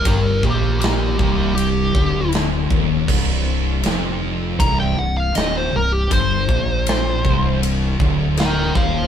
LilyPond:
<<
  \new Staff \with { instrumentName = "Lead electric guitar" } { \time 4/4 \key c \minor \tempo 4 = 79 <g' bes'>8 <bes g'>8 <bes g'>8 <bes g'>8 g'4 r4 | r2 bes''16 g''16 fis''16 f''16 ees''16 c''16 bes'16 g'16 | c''2 r4 <bes' g''>8 <c'' f''>8 | }
  \new Staff \with { instrumentName = "Distorted electric guitar" } { \clef bass \time 4/4 \key c \minor g,8 bes,4 c,4 d,4 ees,8 | c,4 f,4 c,8 c,8 d,8 c,8 | g,8 bes,4 c,4 d,4 ees,8 | }
  \new Staff \with { instrumentName = "Distorted electric guitar" } { \clef bass \time 4/4 \key c \minor g,8 bes,4 c,4 d,4 ees,8 | c,4 f,4 c,8 c,8 d,8 c,8 | g,8 bes,4 c,4 d,4 ees,8 | }
  \new Staff \with { instrumentName = "Distorted electric guitar" } { \clef bass \time 4/4 \key c \minor g,8 bes,4 c,4 d,4 ees,8 | c,4 f,4 c,8 c,8 d,8 c,8 | g,8 bes,4 c,4 d,4 ees,8 | }
  \new Staff \with { instrumentName = "Fingered electric bass" } { \clef bass \time 4/4 \key c \minor g,,8 bes,,4 c,,4 d,,4 ees,,8 | c,,4 f,,4 c,,8 c,,8 d,,8 c,,8 | g,,8 bes,,4 c,,4 d,,4 ees,,8 | }
  \new DrumStaff \with { instrumentName = "Drums" } \drummode { \time 4/4 <bd rb>8 bd8 <rb sn>8 bd8 rb8 bd8 <rb sn>8 bd8 | <cymc bd>4 <rb sn>4 <bd rb>4 <rb sn>4 | <bd rb>8 bd8 <rb sn>8 bd8 rb8 bd8 <rb sn>8 bd8 | }
>>